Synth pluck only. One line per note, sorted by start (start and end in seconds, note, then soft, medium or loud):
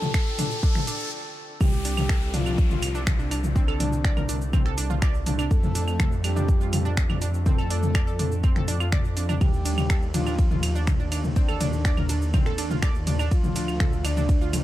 0.38 0.44 D4 medium
0.63 0.69 D4 medium
0.87 0.93 D4 medium
1.85 1.91 D4 medium
2.09 2.21 A4 medium
2.34 2.43 D4 medium
2.46 2.58 D4 medium
2.70 2.82 F4 medium
2.95 3.00 D4 loud
3.19 3.28 D4 medium
3.31 3.40 D4 medium
3.56 3.67 C4 loud
3.68 3.79 A4 loud
3.80 3.92 D4 loud
4.04 4.16 D5 loud
4.17 4.26 A#4 medium
4.29 4.38 D4 medium
4.53 4.65 C4 loud
4.66 4.77 A4 loud
4.77 4.89 D4 loud
4.90 4.99 F4 medium
5.02 5.14 D5 loud
5.27 5.36 D4 medium
5.39 5.44 D4 loud
5.75 5.81 D4 medium
6.00 6.11 A4 medium
6.24 6.33 D4 medium
6.36 6.48 D4 medium
6.61 6.72 F4 medium
6.85 6.91 D4 loud
7.10 7.19 D4 medium
7.22 7.31 D4 medium
7.46 7.58 C4 loud
7.58 7.70 A4 loud
7.70 7.82 D4 loud
7.95 8.07 D5 loud
8.07 8.16 A4 medium
8.19 8.28 D4 medium
8.43 8.55 C4 loud
8.56 8.67 A4 loud
8.68 8.80 D4 loud
8.80 8.89 F4 medium
8.92 9.04 D5 loud
9.17 9.26 D4 medium
9.29 9.34 D4 loud
9.65 9.71 D4 medium
9.90 10.02 A4 medium
10.14 10.23 D4 medium
10.26 10.38 D4 medium
10.51 10.62 F4 medium
10.75 10.81 D4 loud
11.00 11.09 D4 medium
11.12 11.21 D4 medium
11.36 11.48 C4 loud
11.48 11.60 A4 loud
11.61 11.72 D4 loud
11.85 11.97 D5 loud
11.97 12.06 A#4 medium
12.10 12.19 D4 medium
12.34 12.46 C4 loud
12.46 12.58 A4 loud
12.58 12.70 D4 loud
12.71 12.80 F4 medium
12.83 12.94 D5 loud
13.07 13.16 D4 medium
13.20 13.25 D4 loud
13.56 13.61 D4 medium
13.80 13.92 A4 medium
14.05 14.14 D4 medium
14.17 14.28 D4 medium
14.41 14.53 F4 medium